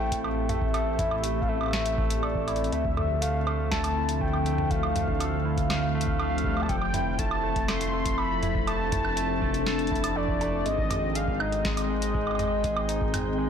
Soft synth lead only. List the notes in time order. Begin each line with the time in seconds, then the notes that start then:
Already playing: G5
0.49 E5
1.41 F5
1.48 E5
2.23 D5
2.72 E5
3.21 F5
3.71 A5
4.21 G5
4.70 F5
5.70 F5
6.19 F5
6.62 A5
6.69 G5
7.18 A5
7.68 C6
8.18 B5
8.67 A5
9.66 A5
10.16 D5
10.65 D#5
11.15 F5
11.40 D#5